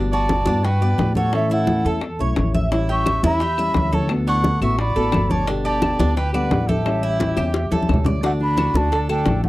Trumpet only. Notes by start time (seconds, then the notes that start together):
0.12 D5
0.64 B4
1.16 A4
1.33 A4
1.52 A4
2.90 E5
3.25 E5
3.94 C#5
4.27 F#5
4.62 E5
4.79 D5
5.29 C#5
5.65 D5
6.17 B4
6.33 B4
6.68 G4
8.24 A3
8.40 D4
8.75 D4
9.10 D4
9.43 A3